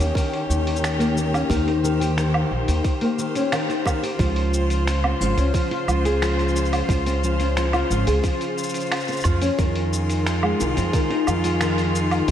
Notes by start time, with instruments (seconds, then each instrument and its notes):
Already playing: string quartet D#3 C#4 G4
0.00 upright bass D#2, nylon-string guitar G4, open hi-hat, cabasa
0.14 nylon-string guitar D#3, kick, open hi-hat, cabasa
0.34 open hi-hat
0.50 upright bass D#2, cabasa
0.67 open hi-hat
0.76 cabasa
0.84 finger snap, open hi-hat, cabasa
0.99 nylon-string guitar A#3, open hi-hat, cabasa
1.16 nylon-string guitar D#3, cabasa
1.33 nylon-string guitar C#4, open hi-hat, cabasa, low woodblock
1.50 upright bass D#2, nylon-string guitar D#3, string quartet C5, kick, open hi-hat, cabasa
1.66 nylon-string guitar D#4, open hi-hat
1.84 nylon-string guitar D#3, cabasa
2.00 nylon-string guitar G4, open hi-hat, cabasa
2.17 nylon-string guitar D#3, finger snap, open hi-hat, cabasa
2.34 low woodblock
2.51 upright bass A#1
2.68 upright bass D#2, open hi-hat, cabasa
2.84 kick, open hi-hat, cabasa
3.01 nylon-string guitar A#3, open hi-hat
3.18 nylon-string guitar D#3, cabasa
3.35 nylon-string guitar C#4, open hi-hat, cabasa
3.52 nylon-string guitar D#3, finger snap, open hi-hat, cabasa, low woodblock
3.69 nylon-string guitar D#4, open hi-hat, cabasa
3.86 nylon-string guitar D#3, kick, cabasa, low woodblock
4.03 nylon-string guitar G4, open hi-hat, cabasa
4.19 upright bass C#2, string quartet C#3 F4, nylon-string guitar F3, kick, open hi-hat, cabasa
4.36 open hi-hat
4.54 cabasa
4.70 open hi-hat, cabasa
4.87 finger snap, open hi-hat, cabasa
5.04 nylon-string guitar C4, low woodblock
5.21 upright bass G#1, nylon-string guitar F3, cabasa
5.37 upright bass C#2, nylon-string guitar C#4, open hi-hat, cabasa
5.54 nylon-string guitar F3, kick, open hi-hat, cabasa
5.71 nylon-string guitar F4, open hi-hat
5.88 upright bass C#2, nylon-string guitar F3, cabasa, low woodblock
6.05 nylon-string guitar G#4, open hi-hat, cabasa
6.22 nylon-string guitar F3, finger snap, open hi-hat, cabasa
6.39 open hi-hat, cabasa
6.48 cabasa
6.56 cabasa
6.65 cabasa
6.73 open hi-hat, cabasa, low woodblock
6.89 upright bass C#2, kick, open hi-hat, cabasa
7.06 nylon-string guitar C4, open hi-hat, cabasa
7.23 nylon-string guitar F3, cabasa
7.40 nylon-string guitar C#4, open hi-hat, cabasa
7.57 nylon-string guitar F3, finger snap, open hi-hat, cabasa
7.73 nylon-string guitar F4, open hi-hat, cabasa, low woodblock
7.90 upright bass G#1, nylon-string guitar F3, cabasa
8.07 upright bass C#2, nylon-string guitar G#4, open hi-hat, cabasa
8.24 nylon-string guitar F3, kick, open hi-hat, cabasa
8.41 open hi-hat, cabasa
8.58 cabasa
8.63 cabasa
8.66 cabasa
8.69 cabasa
8.74 open hi-hat, cabasa
8.80 cabasa
8.86 cabasa
8.92 finger snap, open hi-hat, cabasa, low woodblock
8.96 cabasa
9.00 cabasa
9.04 cabasa
9.08 nylon-string guitar C4, cabasa
9.12 cabasa
9.17 cabasa
9.20 open hi-hat, cabasa, low woodblock
9.24 upright bass F2, nylon-string guitar F3, kick, cabasa
9.42 nylon-string guitar C#4, open hi-hat, cabasa
9.58 upright bass F2, string quartet D#3 G#3 F4, nylon-string guitar D#3, kick, open hi-hat, cabasa
9.76 open hi-hat
9.93 cabasa
10.10 open hi-hat, cabasa
10.27 finger snap, open hi-hat, cabasa
10.43 nylon-string guitar G#3, low woodblock
10.60 upright bass C2, nylon-string guitar D#3, cabasa
10.77 upright bass F2, nylon-string guitar C4, open hi-hat, cabasa
10.93 nylon-string guitar D#3, kick, open hi-hat, cabasa
11.10 nylon-string guitar D#4, open hi-hat
11.27 upright bass F2, nylon-string guitar D#3, cabasa, low woodblock
11.44 nylon-string guitar F4, open hi-hat, cabasa
11.61 nylon-string guitar D#3, finger snap, open hi-hat, cabasa
11.78 open hi-hat, cabasa
11.95 cabasa
12.11 open hi-hat, cabasa, low woodblock
12.28 open hi-hat